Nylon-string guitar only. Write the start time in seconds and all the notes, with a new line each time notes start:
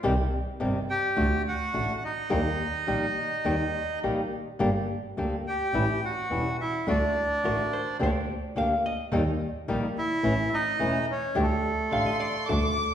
0.03 C3 D#3 G3 C4 G4
0.60 C3 D#3 G3 C4 G4
1.16 D3 A3 D4 F#4
1.73 D3 A3 D4 F#4
2.29 D#3 G3 A#3 D#4 G4
2.87 D#3 G3 A#3 D#4 G4
3.45 D#3 G3 A#3 D#4 G4
4.03 D#3 G3 A#3 D#4 G4
4.59 D3 G3 A#3 D4 G4
5.17 D3 G3 A#3 D4 G4
5.74 E3 G3 C#4 E4
6.30 E3 G3 C#4 E4
6.87 D3 A3 D4 F#4
7.44 D3 A3 D4 F#4
7.99 D3 A#3 D4 G4
8.56 D3 A#3 D4 G4
9.12 D#3 G3 A#3 D#4 G4
9.68 D#3 G3 A#3 D#4 G4
10.23 E3 A3 C#4 E4
10.79 E3 A3 C#4 E4
11.35 D3 A3 D4 G4
11.91 D3 A3 D4 G4
12.48 D3 A3 D4 F#4